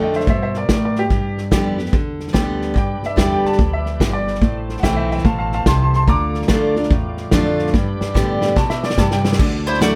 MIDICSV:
0, 0, Header, 1, 8, 480
1, 0, Start_track
1, 0, Tempo, 414651
1, 1276, Time_signature, 4, 2, 24, 8
1, 11523, End_track
2, 0, Start_track
2, 0, Title_t, "Upright piano"
2, 0, Program_c, 0, 0
2, 30, Note_on_c, 0, 75, 64
2, 39, Note_on_c, 0, 79, 76
2, 162, Note_off_c, 0, 75, 0
2, 173, Note_off_c, 0, 79, 0
2, 185, Note_on_c, 0, 72, 71
2, 186, Note_on_c, 0, 76, 81
2, 313, Note_off_c, 0, 72, 0
2, 326, Note_off_c, 0, 76, 0
2, 330, Note_on_c, 0, 72, 72
2, 346, Note_on_c, 0, 76, 85
2, 472, Note_off_c, 0, 72, 0
2, 479, Note_off_c, 0, 76, 0
2, 490, Note_on_c, 0, 72, 73
2, 497, Note_on_c, 0, 76, 89
2, 632, Note_off_c, 0, 72, 0
2, 641, Note_off_c, 0, 76, 0
2, 652, Note_on_c, 0, 70, 63
2, 666, Note_on_c, 0, 74, 72
2, 793, Note_off_c, 0, 70, 0
2, 802, Note_off_c, 0, 74, 0
2, 811, Note_on_c, 0, 70, 74
2, 820, Note_on_c, 0, 74, 83
2, 953, Note_off_c, 0, 70, 0
2, 963, Note_off_c, 0, 74, 0
2, 982, Note_on_c, 0, 70, 60
2, 987, Note_on_c, 0, 74, 74
2, 1119, Note_off_c, 0, 70, 0
2, 1127, Note_off_c, 0, 74, 0
2, 1146, Note_on_c, 0, 67, 96
2, 1598, Note_off_c, 0, 67, 0
2, 3213, Note_on_c, 0, 79, 90
2, 3517, Note_off_c, 0, 79, 0
2, 3542, Note_on_c, 0, 76, 82
2, 3841, Note_off_c, 0, 76, 0
2, 3848, Note_on_c, 0, 79, 78
2, 3999, Note_off_c, 0, 79, 0
2, 4010, Note_on_c, 0, 81, 89
2, 4315, Note_off_c, 0, 81, 0
2, 4322, Note_on_c, 0, 76, 88
2, 4786, Note_on_c, 0, 74, 91
2, 4787, Note_off_c, 0, 76, 0
2, 5258, Note_off_c, 0, 74, 0
2, 5554, Note_on_c, 0, 78, 66
2, 5592, Note_on_c, 0, 76, 85
2, 5593, Note_off_c, 0, 78, 0
2, 5602, Note_on_c, 0, 79, 93
2, 5730, Note_off_c, 0, 76, 0
2, 5741, Note_off_c, 0, 79, 0
2, 5747, Note_on_c, 0, 76, 73
2, 5758, Note_on_c, 0, 79, 85
2, 5902, Note_off_c, 0, 76, 0
2, 5910, Note_off_c, 0, 79, 0
2, 5924, Note_on_c, 0, 76, 72
2, 5928, Note_on_c, 0, 79, 86
2, 6071, Note_off_c, 0, 76, 0
2, 6077, Note_on_c, 0, 77, 76
2, 6079, Note_off_c, 0, 79, 0
2, 6081, Note_on_c, 0, 81, 85
2, 6216, Note_off_c, 0, 77, 0
2, 6228, Note_off_c, 0, 81, 0
2, 6233, Note_on_c, 0, 77, 72
2, 6245, Note_on_c, 0, 81, 84
2, 6385, Note_off_c, 0, 77, 0
2, 6398, Note_off_c, 0, 81, 0
2, 6416, Note_on_c, 0, 77, 79
2, 6417, Note_on_c, 0, 81, 90
2, 6538, Note_off_c, 0, 81, 0
2, 6555, Note_on_c, 0, 81, 81
2, 6557, Note_off_c, 0, 77, 0
2, 6565, Note_on_c, 0, 84, 91
2, 6706, Note_off_c, 0, 81, 0
2, 6718, Note_off_c, 0, 84, 0
2, 6742, Note_on_c, 0, 81, 71
2, 6755, Note_on_c, 0, 84, 84
2, 6878, Note_off_c, 0, 81, 0
2, 6883, Note_off_c, 0, 84, 0
2, 6895, Note_on_c, 0, 81, 81
2, 6901, Note_on_c, 0, 84, 98
2, 7036, Note_off_c, 0, 81, 0
2, 7039, Note_on_c, 0, 82, 95
2, 7045, Note_off_c, 0, 84, 0
2, 7055, Note_on_c, 0, 86, 112
2, 8431, Note_off_c, 0, 82, 0
2, 8443, Note_off_c, 0, 86, 0
2, 9918, Note_on_c, 0, 81, 97
2, 10070, Note_on_c, 0, 76, 91
2, 10071, Note_off_c, 0, 81, 0
2, 10227, Note_off_c, 0, 76, 0
2, 10242, Note_on_c, 0, 74, 86
2, 10393, Note_off_c, 0, 74, 0
2, 10404, Note_on_c, 0, 81, 90
2, 10554, Note_off_c, 0, 81, 0
2, 10564, Note_on_c, 0, 79, 93
2, 10868, Note_off_c, 0, 79, 0
2, 11523, End_track
3, 0, Start_track
3, 0, Title_t, "Mandolin"
3, 0, Program_c, 1, 25
3, 11193, Note_on_c, 1, 72, 80
3, 11207, Note_on_c, 1, 64, 58
3, 11345, Note_off_c, 1, 72, 0
3, 11352, Note_off_c, 1, 64, 0
3, 11362, Note_on_c, 1, 74, 80
3, 11369, Note_on_c, 1, 66, 64
3, 11523, Note_off_c, 1, 66, 0
3, 11523, Note_off_c, 1, 74, 0
3, 11523, End_track
4, 0, Start_track
4, 0, Title_t, "Tonewheel organ"
4, 0, Program_c, 2, 16
4, 3187, Note_on_c, 2, 67, 64
4, 3192, Note_on_c, 2, 74, 68
4, 3193, Note_on_c, 2, 71, 59
4, 5076, Note_off_c, 2, 67, 0
4, 5078, Note_off_c, 2, 71, 0
4, 5078, Note_off_c, 2, 74, 0
4, 5106, Note_on_c, 2, 69, 57
4, 5107, Note_on_c, 2, 72, 73
4, 5108, Note_on_c, 2, 64, 67
4, 6994, Note_off_c, 2, 69, 0
4, 6994, Note_off_c, 2, 72, 0
4, 6995, Note_off_c, 2, 64, 0
4, 7027, Note_on_c, 2, 65, 67
4, 7030, Note_on_c, 2, 57, 64
4, 7032, Note_on_c, 2, 74, 72
4, 8912, Note_off_c, 2, 65, 0
4, 8914, Note_off_c, 2, 57, 0
4, 8915, Note_off_c, 2, 74, 0
4, 8951, Note_on_c, 2, 67, 79
4, 8951, Note_on_c, 2, 71, 73
4, 8955, Note_on_c, 2, 74, 90
4, 10831, Note_off_c, 2, 67, 0
4, 10831, Note_off_c, 2, 71, 0
4, 10833, Note_off_c, 2, 74, 0
4, 10866, Note_on_c, 2, 66, 67
4, 10868, Note_on_c, 2, 69, 63
4, 10874, Note_on_c, 2, 74, 73
4, 11523, Note_off_c, 2, 66, 0
4, 11523, Note_off_c, 2, 69, 0
4, 11523, Note_off_c, 2, 74, 0
4, 11523, End_track
5, 0, Start_track
5, 0, Title_t, "Steel-string acoustic guitar"
5, 0, Program_c, 3, 25
5, 0, Note_on_c, 3, 50, 74
5, 0, Note_on_c, 3, 57, 88
5, 0, Note_on_c, 3, 62, 80
5, 0, Note_on_c, 3, 65, 94
5, 301, Note_off_c, 3, 50, 0
5, 304, Note_off_c, 3, 62, 0
5, 305, Note_off_c, 3, 57, 0
5, 307, Note_off_c, 3, 65, 0
5, 324, Note_on_c, 3, 47, 79
5, 783, Note_off_c, 3, 47, 0
5, 803, Note_on_c, 3, 45, 92
5, 1263, Note_off_c, 3, 45, 0
5, 1278, Note_on_c, 3, 43, 80
5, 1750, Note_on_c, 3, 50, 85
5, 1757, Note_on_c, 3, 55, 83
5, 1766, Note_on_c, 3, 59, 82
5, 1767, Note_on_c, 3, 67, 82
5, 2050, Note_off_c, 3, 67, 0
5, 2053, Note_off_c, 3, 50, 0
5, 2056, Note_off_c, 3, 55, 0
5, 2061, Note_off_c, 3, 59, 0
5, 2064, Note_on_c, 3, 67, 55
5, 2078, Note_on_c, 3, 59, 49
5, 2205, Note_off_c, 3, 43, 0
5, 2229, Note_off_c, 3, 67, 0
5, 2233, Note_on_c, 3, 50, 82
5, 2236, Note_off_c, 3, 59, 0
5, 2682, Note_off_c, 3, 50, 0
5, 2695, Note_on_c, 3, 50, 90
5, 2702, Note_on_c, 3, 55, 85
5, 2702, Note_on_c, 3, 59, 93
5, 2707, Note_on_c, 3, 67, 97
5, 3170, Note_on_c, 3, 43, 87
5, 3171, Note_off_c, 3, 50, 0
5, 3174, Note_off_c, 3, 55, 0
5, 3174, Note_off_c, 3, 59, 0
5, 3176, Note_off_c, 3, 67, 0
5, 3658, Note_on_c, 3, 50, 74
5, 3670, Note_on_c, 3, 55, 88
5, 3670, Note_on_c, 3, 59, 83
5, 3678, Note_on_c, 3, 67, 91
5, 4111, Note_off_c, 3, 43, 0
5, 4132, Note_off_c, 3, 50, 0
5, 4138, Note_off_c, 3, 55, 0
5, 4138, Note_off_c, 3, 59, 0
5, 4142, Note_off_c, 3, 67, 0
5, 4150, Note_on_c, 3, 41, 80
5, 4618, Note_off_c, 3, 41, 0
5, 4638, Note_on_c, 3, 43, 94
5, 5102, Note_off_c, 3, 43, 0
5, 5111, Note_on_c, 3, 45, 85
5, 5589, Note_on_c, 3, 52, 82
5, 5598, Note_on_c, 3, 57, 83
5, 5602, Note_on_c, 3, 64, 94
5, 5603, Note_on_c, 3, 60, 83
5, 6042, Note_off_c, 3, 45, 0
5, 6058, Note_off_c, 3, 52, 0
5, 6062, Note_off_c, 3, 57, 0
5, 6064, Note_off_c, 3, 64, 0
5, 6065, Note_off_c, 3, 60, 0
5, 6081, Note_on_c, 3, 47, 80
5, 6543, Note_off_c, 3, 47, 0
5, 6564, Note_on_c, 3, 48, 91
5, 7025, Note_off_c, 3, 48, 0
5, 7041, Note_on_c, 3, 50, 87
5, 7488, Note_off_c, 3, 50, 0
5, 7502, Note_on_c, 3, 50, 84
5, 7509, Note_on_c, 3, 57, 81
5, 7515, Note_on_c, 3, 62, 86
5, 7521, Note_on_c, 3, 65, 83
5, 7809, Note_off_c, 3, 50, 0
5, 7813, Note_off_c, 3, 57, 0
5, 7815, Note_off_c, 3, 62, 0
5, 7816, Note_off_c, 3, 65, 0
5, 7830, Note_on_c, 3, 65, 59
5, 7840, Note_on_c, 3, 62, 47
5, 7991, Note_off_c, 3, 65, 0
5, 7996, Note_off_c, 3, 62, 0
5, 8003, Note_on_c, 3, 45, 85
5, 8474, Note_on_c, 3, 50, 91
5, 8483, Note_on_c, 3, 57, 98
5, 8489, Note_on_c, 3, 62, 105
5, 8496, Note_on_c, 3, 65, 101
5, 8925, Note_off_c, 3, 45, 0
5, 8938, Note_off_c, 3, 50, 0
5, 8943, Note_off_c, 3, 57, 0
5, 8946, Note_off_c, 3, 62, 0
5, 8949, Note_off_c, 3, 65, 0
5, 8964, Note_on_c, 3, 43, 84
5, 9428, Note_on_c, 3, 50, 86
5, 9434, Note_on_c, 3, 55, 81
5, 9441, Note_on_c, 3, 59, 92
5, 9449, Note_on_c, 3, 67, 85
5, 9885, Note_off_c, 3, 43, 0
5, 9894, Note_off_c, 3, 50, 0
5, 9897, Note_off_c, 3, 55, 0
5, 9900, Note_off_c, 3, 59, 0
5, 9905, Note_off_c, 3, 67, 0
5, 9909, Note_on_c, 3, 47, 84
5, 10374, Note_off_c, 3, 47, 0
5, 10397, Note_on_c, 3, 48, 95
5, 10857, Note_off_c, 3, 48, 0
5, 10880, Note_on_c, 3, 50, 91
5, 11345, Note_on_c, 3, 54, 80
5, 11353, Note_on_c, 3, 57, 90
5, 11354, Note_on_c, 3, 64, 99
5, 11360, Note_on_c, 3, 66, 94
5, 11523, Note_off_c, 3, 50, 0
5, 11523, Note_off_c, 3, 54, 0
5, 11523, Note_off_c, 3, 57, 0
5, 11523, Note_off_c, 3, 64, 0
5, 11523, Note_off_c, 3, 66, 0
5, 11523, End_track
6, 0, Start_track
6, 0, Title_t, "Upright bass"
6, 0, Program_c, 4, 32
6, 0, Note_on_c, 4, 41, 85
6, 300, Note_off_c, 4, 41, 0
6, 318, Note_on_c, 4, 43, 82
6, 783, Note_off_c, 4, 43, 0
6, 795, Note_on_c, 4, 45, 88
6, 1262, Note_off_c, 4, 45, 0
6, 1273, Note_on_c, 4, 43, 77
6, 1741, Note_off_c, 4, 43, 0
6, 1756, Note_on_c, 4, 41, 87
6, 2223, Note_off_c, 4, 41, 0
6, 2234, Note_on_c, 4, 40, 84
6, 2702, Note_off_c, 4, 40, 0
6, 2714, Note_on_c, 4, 38, 88
6, 3182, Note_off_c, 4, 38, 0
6, 3194, Note_on_c, 4, 43, 76
6, 3486, Note_off_c, 4, 43, 0
6, 3673, Note_on_c, 4, 40, 88
6, 3965, Note_off_c, 4, 40, 0
6, 4156, Note_on_c, 4, 38, 85
6, 4623, Note_off_c, 4, 38, 0
6, 4632, Note_on_c, 4, 31, 90
6, 5102, Note_off_c, 4, 31, 0
6, 5109, Note_on_c, 4, 33, 82
6, 5580, Note_off_c, 4, 33, 0
6, 5596, Note_on_c, 4, 35, 85
6, 6064, Note_off_c, 4, 35, 0
6, 6074, Note_on_c, 4, 33, 90
6, 6542, Note_off_c, 4, 33, 0
6, 6553, Note_on_c, 4, 36, 96
6, 7021, Note_off_c, 4, 36, 0
6, 7033, Note_on_c, 4, 38, 76
6, 7501, Note_off_c, 4, 38, 0
6, 7509, Note_on_c, 4, 38, 89
6, 7979, Note_off_c, 4, 38, 0
6, 7992, Note_on_c, 4, 40, 87
6, 8460, Note_off_c, 4, 40, 0
6, 8474, Note_on_c, 4, 41, 95
6, 8941, Note_off_c, 4, 41, 0
6, 8953, Note_on_c, 4, 43, 85
6, 9244, Note_off_c, 4, 43, 0
6, 9434, Note_on_c, 4, 45, 84
6, 9899, Note_off_c, 4, 45, 0
6, 9911, Note_on_c, 4, 47, 93
6, 10378, Note_off_c, 4, 47, 0
6, 10388, Note_on_c, 4, 43, 94
6, 10855, Note_off_c, 4, 43, 0
6, 10873, Note_on_c, 4, 38, 82
6, 11523, Note_off_c, 4, 38, 0
6, 11523, End_track
7, 0, Start_track
7, 0, Title_t, "Muted upright bass strokes"
7, 3498, Note_on_c, 9, 29, 38
7, 3614, Note_off_c, 9, 29, 0
7, 3980, Note_on_c, 9, 29, 41
7, 4095, Note_off_c, 9, 29, 0
7, 9270, Note_on_c, 9, 29, 40
7, 9386, Note_off_c, 9, 29, 0
7, 11523, End_track
8, 0, Start_track
8, 0, Title_t, "Drums"
8, 149, Note_on_c, 9, 38, 33
8, 231, Note_off_c, 9, 38, 0
8, 231, Note_on_c, 9, 38, 32
8, 306, Note_off_c, 9, 38, 0
8, 306, Note_on_c, 9, 38, 35
8, 316, Note_on_c, 9, 36, 110
8, 422, Note_off_c, 9, 38, 0
8, 431, Note_off_c, 9, 36, 0
8, 624, Note_on_c, 9, 38, 31
8, 739, Note_off_c, 9, 38, 0
8, 796, Note_on_c, 9, 38, 103
8, 796, Note_on_c, 9, 44, 77
8, 797, Note_on_c, 9, 36, 81
8, 912, Note_off_c, 9, 38, 0
8, 912, Note_off_c, 9, 44, 0
8, 913, Note_off_c, 9, 36, 0
8, 1105, Note_on_c, 9, 38, 35
8, 1221, Note_off_c, 9, 38, 0
8, 1272, Note_on_c, 9, 38, 34
8, 1278, Note_on_c, 9, 36, 104
8, 1388, Note_off_c, 9, 38, 0
8, 1394, Note_off_c, 9, 36, 0
8, 1595, Note_on_c, 9, 38, 32
8, 1710, Note_off_c, 9, 38, 0
8, 1756, Note_on_c, 9, 36, 80
8, 1756, Note_on_c, 9, 38, 106
8, 1756, Note_on_c, 9, 44, 82
8, 1871, Note_off_c, 9, 36, 0
8, 1872, Note_off_c, 9, 38, 0
8, 1872, Note_off_c, 9, 44, 0
8, 2068, Note_on_c, 9, 38, 32
8, 2150, Note_off_c, 9, 38, 0
8, 2150, Note_on_c, 9, 38, 34
8, 2227, Note_off_c, 9, 38, 0
8, 2227, Note_on_c, 9, 38, 35
8, 2234, Note_on_c, 9, 36, 111
8, 2343, Note_off_c, 9, 38, 0
8, 2350, Note_off_c, 9, 36, 0
8, 2545, Note_on_c, 9, 38, 31
8, 2633, Note_off_c, 9, 38, 0
8, 2633, Note_on_c, 9, 38, 31
8, 2713, Note_off_c, 9, 38, 0
8, 2713, Note_on_c, 9, 38, 102
8, 2713, Note_on_c, 9, 44, 82
8, 2714, Note_on_c, 9, 36, 80
8, 2829, Note_off_c, 9, 38, 0
8, 2829, Note_off_c, 9, 44, 0
8, 2830, Note_off_c, 9, 36, 0
8, 3028, Note_on_c, 9, 38, 35
8, 3143, Note_off_c, 9, 38, 0
8, 3190, Note_on_c, 9, 38, 33
8, 3193, Note_on_c, 9, 36, 105
8, 3305, Note_off_c, 9, 38, 0
8, 3308, Note_off_c, 9, 36, 0
8, 3508, Note_on_c, 9, 38, 32
8, 3624, Note_off_c, 9, 38, 0
8, 3674, Note_on_c, 9, 36, 84
8, 3680, Note_on_c, 9, 38, 108
8, 3680, Note_on_c, 9, 44, 87
8, 3789, Note_off_c, 9, 36, 0
8, 3795, Note_off_c, 9, 38, 0
8, 3795, Note_off_c, 9, 44, 0
8, 3996, Note_on_c, 9, 38, 35
8, 4078, Note_off_c, 9, 38, 0
8, 4078, Note_on_c, 9, 38, 31
8, 4154, Note_off_c, 9, 38, 0
8, 4154, Note_on_c, 9, 36, 111
8, 4154, Note_on_c, 9, 38, 33
8, 4269, Note_off_c, 9, 38, 0
8, 4270, Note_off_c, 9, 36, 0
8, 4466, Note_on_c, 9, 38, 31
8, 4581, Note_off_c, 9, 38, 0
8, 4634, Note_on_c, 9, 36, 80
8, 4642, Note_on_c, 9, 38, 113
8, 4642, Note_on_c, 9, 44, 80
8, 4750, Note_off_c, 9, 36, 0
8, 4757, Note_off_c, 9, 38, 0
8, 4757, Note_off_c, 9, 44, 0
8, 4948, Note_on_c, 9, 38, 35
8, 5033, Note_off_c, 9, 38, 0
8, 5033, Note_on_c, 9, 38, 31
8, 5112, Note_on_c, 9, 36, 103
8, 5115, Note_off_c, 9, 38, 0
8, 5115, Note_on_c, 9, 38, 34
8, 5227, Note_off_c, 9, 36, 0
8, 5230, Note_off_c, 9, 38, 0
8, 5431, Note_on_c, 9, 38, 33
8, 5520, Note_off_c, 9, 38, 0
8, 5520, Note_on_c, 9, 38, 33
8, 5595, Note_on_c, 9, 36, 85
8, 5601, Note_off_c, 9, 38, 0
8, 5601, Note_on_c, 9, 38, 111
8, 5601, Note_on_c, 9, 44, 87
8, 5711, Note_off_c, 9, 36, 0
8, 5717, Note_off_c, 9, 38, 0
8, 5717, Note_off_c, 9, 44, 0
8, 5916, Note_on_c, 9, 38, 35
8, 5997, Note_off_c, 9, 38, 0
8, 5997, Note_on_c, 9, 38, 32
8, 6074, Note_off_c, 9, 38, 0
8, 6074, Note_on_c, 9, 36, 107
8, 6074, Note_on_c, 9, 38, 35
8, 6190, Note_off_c, 9, 36, 0
8, 6190, Note_off_c, 9, 38, 0
8, 6390, Note_on_c, 9, 38, 32
8, 6506, Note_off_c, 9, 38, 0
8, 6552, Note_on_c, 9, 38, 109
8, 6552, Note_on_c, 9, 44, 89
8, 6553, Note_on_c, 9, 36, 89
8, 6668, Note_off_c, 9, 38, 0
8, 6668, Note_off_c, 9, 44, 0
8, 6669, Note_off_c, 9, 36, 0
8, 6866, Note_on_c, 9, 38, 35
8, 6982, Note_off_c, 9, 38, 0
8, 7028, Note_on_c, 9, 38, 35
8, 7033, Note_on_c, 9, 36, 108
8, 7144, Note_off_c, 9, 38, 0
8, 7149, Note_off_c, 9, 36, 0
8, 7342, Note_on_c, 9, 38, 34
8, 7428, Note_off_c, 9, 38, 0
8, 7428, Note_on_c, 9, 38, 32
8, 7503, Note_off_c, 9, 38, 0
8, 7503, Note_on_c, 9, 38, 108
8, 7503, Note_on_c, 9, 44, 86
8, 7512, Note_on_c, 9, 36, 84
8, 7619, Note_off_c, 9, 38, 0
8, 7619, Note_off_c, 9, 44, 0
8, 7628, Note_off_c, 9, 36, 0
8, 7825, Note_on_c, 9, 38, 34
8, 7906, Note_off_c, 9, 38, 0
8, 7906, Note_on_c, 9, 38, 35
8, 7990, Note_off_c, 9, 38, 0
8, 7990, Note_on_c, 9, 38, 34
8, 7994, Note_on_c, 9, 36, 114
8, 8106, Note_off_c, 9, 38, 0
8, 8110, Note_off_c, 9, 36, 0
8, 8301, Note_on_c, 9, 38, 34
8, 8417, Note_off_c, 9, 38, 0
8, 8467, Note_on_c, 9, 38, 108
8, 8467, Note_on_c, 9, 44, 87
8, 8474, Note_on_c, 9, 36, 80
8, 8583, Note_off_c, 9, 38, 0
8, 8583, Note_off_c, 9, 44, 0
8, 8590, Note_off_c, 9, 36, 0
8, 8783, Note_on_c, 9, 38, 34
8, 8875, Note_off_c, 9, 38, 0
8, 8875, Note_on_c, 9, 38, 32
8, 8955, Note_off_c, 9, 38, 0
8, 8955, Note_on_c, 9, 38, 60
8, 8958, Note_on_c, 9, 36, 109
8, 9071, Note_off_c, 9, 38, 0
8, 9074, Note_off_c, 9, 36, 0
8, 9272, Note_on_c, 9, 38, 67
8, 9387, Note_off_c, 9, 38, 0
8, 9438, Note_on_c, 9, 36, 89
8, 9443, Note_on_c, 9, 38, 70
8, 9443, Note_on_c, 9, 44, 88
8, 9553, Note_off_c, 9, 36, 0
8, 9559, Note_off_c, 9, 38, 0
8, 9559, Note_off_c, 9, 44, 0
8, 9742, Note_on_c, 9, 38, 75
8, 9858, Note_off_c, 9, 38, 0
8, 9914, Note_on_c, 9, 38, 85
8, 9915, Note_on_c, 9, 36, 115
8, 10030, Note_off_c, 9, 38, 0
8, 10031, Note_off_c, 9, 36, 0
8, 10068, Note_on_c, 9, 38, 67
8, 10184, Note_off_c, 9, 38, 0
8, 10226, Note_on_c, 9, 38, 80
8, 10303, Note_off_c, 9, 38, 0
8, 10303, Note_on_c, 9, 38, 72
8, 10392, Note_off_c, 9, 38, 0
8, 10392, Note_on_c, 9, 38, 91
8, 10392, Note_on_c, 9, 44, 88
8, 10393, Note_on_c, 9, 36, 86
8, 10508, Note_off_c, 9, 38, 0
8, 10508, Note_off_c, 9, 44, 0
8, 10509, Note_off_c, 9, 36, 0
8, 10545, Note_on_c, 9, 38, 81
8, 10661, Note_off_c, 9, 38, 0
8, 10702, Note_on_c, 9, 38, 97
8, 10795, Note_off_c, 9, 38, 0
8, 10795, Note_on_c, 9, 38, 86
8, 10874, Note_on_c, 9, 36, 118
8, 10876, Note_off_c, 9, 38, 0
8, 10876, Note_on_c, 9, 38, 36
8, 10876, Note_on_c, 9, 49, 109
8, 10990, Note_off_c, 9, 36, 0
8, 10992, Note_off_c, 9, 38, 0
8, 10992, Note_off_c, 9, 49, 0
8, 11190, Note_on_c, 9, 38, 34
8, 11271, Note_off_c, 9, 38, 0
8, 11271, Note_on_c, 9, 38, 34
8, 11364, Note_off_c, 9, 38, 0
8, 11364, Note_on_c, 9, 38, 113
8, 11364, Note_on_c, 9, 44, 88
8, 11480, Note_off_c, 9, 38, 0
8, 11480, Note_off_c, 9, 44, 0
8, 11523, End_track
0, 0, End_of_file